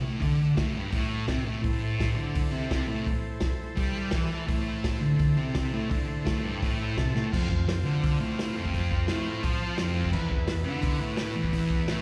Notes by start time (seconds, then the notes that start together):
0.01 A2
0.19 D3, kick, open hi-hat
0.56 A2, kick, snare, open hi-hat
0.74 G2
0.91 A2, kick, open hi-hat
1.28 C3, kick, snare, open hi-hat
1.46 A2
1.62 A2 E4 A4 C5, kick, open hi-hat
2.00 kick, snare, open hi-hat
2.16 D3
2.35 kick, open hi-hat
2.52 C3
2.71 kick, snare, open hi-hat
2.88 A2
3.07 kick, open hi-hat
3.40 kick, snare, open hi-hat
3.76 G3, kick, open hi-hat
4.11 E3 E5, kick, snare, open hi-hat
4.35 A5
4.48 A2 E4 A4 C5, kick, open hi-hat
4.84 kick, snare, open hi-hat
5.01 D3
5.19 kick, open hi-hat
5.38 C3
5.55 kick, snare, open hi-hat
5.74 A2
5.91 D3, kick, open hi-hat
6.25 A2, kick, snare, open hi-hat
6.44 G2
6.62 A2, kick, open hi-hat
6.77 E5
6.88 G5
6.98 C3 A5, kick, snare, open hi-hat
7.15 A2, snare
7.32 F2 C4 F4 C5, kick, crash
7.50 F2, kick
7.67 F2, snare, open hi-hat
7.84 D3
8.04 kick, open hi-hat
8.20 A2
8.39 snare, open hi-hat
8.56 F2
8.65 kick
8.74 kick, open hi-hat
8.91 kick
9.07 A2, snare, open hi-hat
9.43 F3, kick, open hi-hat
9.77 F2, snare, open hi-hat
10.05 kick
10.11 E2 B3 E4 B4, kick, crash
10.30 E2, kick
10.47 E2, snare, open hi-hat
10.64 D3
10.82 kick, open hi-hat
11.01 A2
11.17 snare, open hi-hat
11.36 E2
11.44 kick
11.53 kick, open hi-hat
11.70 kick
11.87 A2, snare, open hi-hat